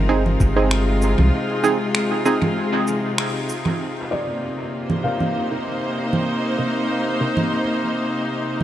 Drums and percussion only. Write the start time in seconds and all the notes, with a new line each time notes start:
0.26 low conga
0.40 kick, cabasa
0.71 finger snap
1.02 cabasa
1.18 low conga
1.64 cabasa
1.95 finger snap
2.26 cabasa
2.42 low conga
2.87 cabasa
3.18 finger snap
3.49 cabasa
3.66 low conga
4.90 low conga
5.20 low conga
6.13 low conga
7.37 low conga